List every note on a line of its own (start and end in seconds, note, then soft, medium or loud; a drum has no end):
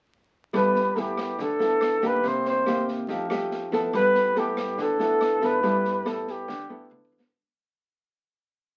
0.53 0.93 G1 loud
0.53 1.36 G3 medium
0.53 0.81 B3 medium
0.53 0.81 E4 soft
0.53 0.81 A4 medium
0.53 1.02 B4 loud
0.53 kick medium
0.53 cross-stick medium
0.53 snare soft
0.75 snare soft
0.96 1.36 G1 medium
0.96 1.38 B3 soft
0.96 1.38 E4 medium
0.96 1.39 A4 soft
0.96 snare soft
1.00 1.43 G4 medium
1.17 kick soft
1.17 cross-stick medium
1.17 snare soft
1.38 1.98 D2 medium
1.38 2.21 D3 medium
1.38 2.08 A4 loud
1.38 kick medium
1.38 snare soft
1.59 1.99 B3 soft
1.59 1.99 E4 medium
1.59 1.99 A4 medium
1.59 snare soft
1.81 cross-stick medium
1.81 snare soft
2.02 2.22 G1 medium
2.02 2.62 A#3 medium
2.02 2.63 D#4 medium
2.02 2.63 G4 medium
2.02 kick soft
2.02 snare soft
2.07 2.29 B4 medium
2.23 2.63 C2 medium
2.23 3.07 C3 medium
2.23 2.47 C5 loud
2.23 kick medium
2.23 snare soft
2.45 snare soft
2.49 2.87 C5 loud
2.66 3.06 D#2 medium
2.66 3.07 A#3 medium
2.66 3.07 D#4 soft
2.66 3.07 G4 medium
2.66 cross-stick medium
2.66 snare soft
2.87 kick soft
2.87 snare soft
3.08 3.68 F2 medium
3.08 3.91 F3 medium
3.08 3.26 A3 medium
3.08 3.27 D#4 medium
3.08 3.27 G4 medium
3.08 kick medium
3.08 snare soft
3.30 3.69 A3 medium
3.30 3.69 D#4 medium
3.30 3.69 G4 medium
3.30 cross-stick medium
3.30 snare soft
3.51 snare soft
3.72 3.92 F2 medium
3.72 4.33 B3 medium
3.72 4.33 E4 medium
3.72 4.33 A4 medium
3.72 kick soft
3.72 snare soft
3.93 4.33 G2 medium
3.93 4.76 G3 medium
3.93 4.40 B4 loud
3.93 kick medium
3.93 cross-stick soft
3.93 snare soft
4.15 snare soft
4.36 4.75 G2 medium
4.36 4.96 B3 medium
4.36 4.96 E4 medium
4.36 4.84 G4 medium
4.36 4.96 A4 medium
4.36 snare soft
4.57 kick soft
4.57 cross-stick medium
4.57 snare soft
4.77 5.38 D2 medium
4.77 5.61 D3 medium
4.77 kick medium
4.77 snare soft
4.82 5.47 A4 loud
4.99 5.38 B3 medium
4.99 5.39 E4 medium
4.99 5.39 A4 medium
4.99 snare soft
5.21 cross-stick medium
5.21 snare soft
5.41 5.62 G2 medium
5.41 5.60 B3 medium
5.41 5.60 E4 medium
5.41 5.60 A4 medium
5.41 kick soft
5.41 snare soft
5.46 6.07 B4 loud
5.63 6.03 G2 medium
5.63 6.46 G3 medium
5.63 6.02 B3 soft
5.63 6.02 E4 medium
5.63 6.03 A4 medium
5.63 kick medium
5.63 snare soft
5.85 snare soft
6.05 6.45 G2 medium
6.05 6.47 B3 medium
6.05 6.48 E4 medium
6.05 6.48 A4 medium
6.05 cross-stick medium
6.05 snare soft
6.10 6.32 A4 medium
6.27 6.93 G4 medium
6.27 kick soft
6.27 snare soft
6.48 7.08 D2 medium
6.48 7.31 D3 medium
6.48 kick medium
6.48 snare soft
6.62 kick soft
6.69 7.30 B3 medium
6.69 7.30 E4 medium
6.69 7.30 A4 medium
6.91 mid tom soft
7.05 kick medium
7.12 7.32 G2 medium
7.19 snare medium